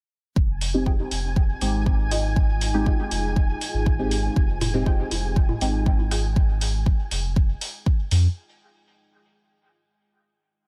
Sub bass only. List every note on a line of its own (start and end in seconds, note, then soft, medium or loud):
0.36 1.04 F1 medium
1.11 1.54 F1 medium
1.61 2.91 G#1 medium
3.11 3.54 F1 medium
3.74 4.29 G#1 medium
4.36 5.04 F1 loud
5.11 5.54 F1 medium
5.61 6.91 G#1 medium
7.11 7.54 F1 medium
8.11 8.27 F2 loud